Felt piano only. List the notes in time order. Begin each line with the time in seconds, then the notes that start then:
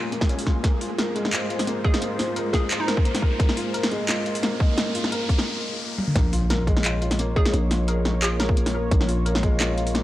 Already playing: G#3 A#3 D#4 F4 A#4
0.12 A#3
0.29 C#4
0.47 F4
0.64 A#3
0.81 F4
0.98 A#4
1.15 G#3
1.33 F4
1.50 F4
1.67 A#3
1.84 D#4
2.01 A#3
2.19 F4
2.36 A#4
2.53 A#3
2.71 F4
2.88 A#4
3.05 A#3
3.22 A#4
3.39 A#3
3.57 F4
3.74 A#4
3.91 G#3
4.08 F4
4.26 F4
4.43 A#3
4.60 D#4
4.77 A#3
4.95 F4
5.12 A#4
5.29 A#3
6.15 A#3
6.33 F4
6.50 A#4
6.67 G#3
6.85 F4
7.02 F4
7.19 A#3
7.36 D#4
7.54 A#3
7.71 F4
7.88 A#4
8.05 A#3
8.23 F4
8.40 A#4
8.57 A#3
8.74 A#4
8.91 A#3
9.08 F4
9.25 A#4
9.43 G#3
9.60 F4
9.77 F4
9.94 A#3